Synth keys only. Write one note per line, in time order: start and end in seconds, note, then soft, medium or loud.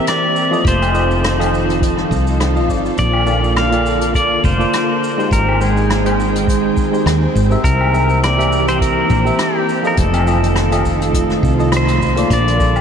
0.51 0.91 F3 medium
0.51 0.91 F4 medium
0.51 0.91 A4 medium
0.51 0.92 D#5 medium
0.93 1.35 F3 medium
0.93 1.35 F4 medium
0.93 1.35 A4 medium
0.93 1.36 D#5 medium
1.38 1.78 F3 medium
1.38 1.78 F4 medium
1.38 1.79 A4 medium
1.38 1.79 D#5 medium
1.80 2.07 F3 medium
1.80 2.08 F4 medium
1.80 2.08 A4 medium
1.80 2.09 D#5 medium
2.08 2.51 F3 medium
2.08 2.51 F4 medium
2.08 2.52 A4 medium
2.08 2.52 D#5 medium
2.54 2.65 F3 medium
2.54 2.66 F4 medium
2.54 2.66 A4 medium
2.54 2.66 D#5 medium
2.67 2.83 F3 medium
2.67 2.84 F4 medium
2.67 2.84 A4 medium
2.67 2.84 D5 medium
3.26 3.68 A#3 medium
3.26 3.68 F4 medium
3.26 3.69 A4 medium
3.26 3.69 D5 medium
3.71 4.11 A#3 medium
3.71 4.11 F4 medium
3.71 4.12 A4 medium
3.71 4.12 D5 medium
4.13 4.55 A#3 medium
4.13 4.55 F4 medium
4.13 4.56 A4 medium
4.13 4.56 D5 medium
4.58 4.72 A#3 medium
4.58 4.72 F4 medium
4.58 4.72 A4 medium
4.58 4.73 D5 medium
5.17 5.57 G#3 medium
5.17 5.57 D#4 medium
5.17 5.58 G4 medium
5.17 5.58 C5 medium
5.60 6.01 G#3 medium
5.60 6.02 D#4 medium
5.60 6.03 C5 medium
5.60 6.02 G5 medium
6.05 6.44 G#3 medium
6.05 6.45 D#4 medium
6.05 6.45 C5 medium
6.05 6.45 G5 medium
6.46 6.88 G#3 medium
6.46 6.89 D#4 medium
6.46 6.90 C5 medium
6.46 6.89 G5 medium
6.91 7.05 G#3 medium
6.91 7.05 D#4 medium
6.91 7.05 G4 medium
6.91 7.06 C5 loud
7.50 7.90 C4 medium
7.50 7.90 G4 medium
7.50 7.90 A#4 medium
7.50 7.91 E5 medium
7.92 8.34 C4 medium
7.92 8.34 G4 medium
7.92 8.35 A#4 medium
7.92 8.35 E5 medium
8.37 8.77 C4 medium
8.37 8.77 G4 medium
8.37 8.78 A#4 medium
8.37 8.78 E5 loud
8.80 9.22 C4 medium
8.80 9.22 G4 medium
8.80 9.22 A#4 medium
8.80 9.23 E5 medium
9.24 9.38 C4 medium
9.24 9.38 G4 medium
9.24 9.38 A#4 medium
9.24 9.39 E5 loud
9.83 10.23 F3 medium
9.83 10.23 F4 medium
9.83 10.23 A4 medium
9.83 10.24 D#5 medium
10.26 10.67 F3 medium
10.26 10.68 F4 medium
10.26 10.68 A4 medium
10.26 10.69 D#5 medium
10.71 11.10 F3 medium
10.71 11.11 F4 medium
10.71 11.11 A4 medium
10.71 11.11 D#5 loud
11.13 11.55 F3 medium
11.13 11.55 F4 medium
11.13 11.55 A4 medium
11.13 11.56 D#5 medium
11.57 11.71 F3 medium
11.57 11.71 F4 medium
11.57 11.72 A4 medium
11.57 11.72 D#5 loud
12.16 12.56 A#3 medium
12.16 12.56 F4 medium
12.16 12.56 A4 medium
12.16 12.57 D5 medium
12.57 12.81 A#3 medium
12.57 12.81 F4 medium
12.57 12.81 A4 medium
12.57 12.81 D5 medium